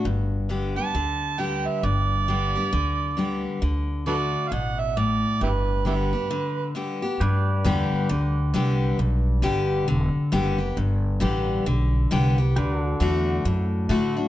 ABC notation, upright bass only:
X:1
M:4/4
L:1/8
Q:"Swing" 1/4=134
K:G
V:1 name="Upright bass" clef=bass
G,,,4 D,,4 | G,,,4 D,,4 | D,,4 A,,,4 | G,,,4 z4 |
G,,2 E,, z D,,2 C,,2 | B,,,2 G,,,2 E,,, z F,,,2 | G,,,2 A,,,2 B,,,2 C,,2 | D,,2 E,,2 F,,2 A,,2 |]